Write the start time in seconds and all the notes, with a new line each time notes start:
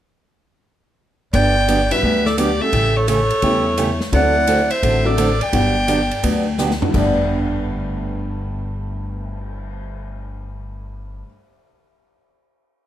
1.33 G1 D3 F#3 B3 D4 G4 D5 G5, kick, ride
1.68 D3 F#3 B3 D4 G4, hi-hat pedal, ride
1.90 G3 B3 D4 F#4 B4 E5, ride
2.03 D2 D3 F#3 B3 D4 G4, kick
2.26 A4 D5, snare
2.37 D3 F#3 B3 D4 G4 D5, hi-hat pedal, ride
2.60 G3 A3 C#4 F#4 A4 E5
2.72 A1 C#3 E3 A3 C#4 G4, kick, ride
2.96 A4 C#5
3.07 C#3 E3 A3 C#4 G4 A4 C#5, hi-hat pedal, ride
3.30 ride
3.42 E2 C#3 E3 G3 A3 C#4 E4 G4, kick, ride
3.77 C#3 E3 A3 C#4 G4, hi-hat pedal, ride
4.01 snare
4.12 D2 D3 F#3 A3 C4 D4 E4 F#4 A4 D5 F#5, kick, ride
4.47 D3 A3 C4 F#4 A4, hi-hat pedal, ride
4.70 C5 E5, ride
4.82 A1 D3 A3 C4 F#4 A4, kick, ride
5.05 F#3 C4 D4 F#4 A4 D5
5.17 D3 A3 C4 F#4 A4, hi-hat pedal, ride
5.41 D5 G5, ride
5.52 G1 D3 F#3 G3 B3 D4 F#4 G4, kick, ride
5.88 D3 F#3 B3 D4 G4, hi-hat pedal, ride
6.11 ride
6.22 D2 D3 F#3 B3 D4 G4, kick, ride
6.58 D3 F#3 B3 D4 G4, snare, hi-hat pedal
6.71 snare
6.81 G2 G3 B3 D4 F#4, floor tom
6.88 D3
6.93 G1 G2 D3 A3 B3 D4 G4, kick, crash
7.01 B3
7.17 cymbal swell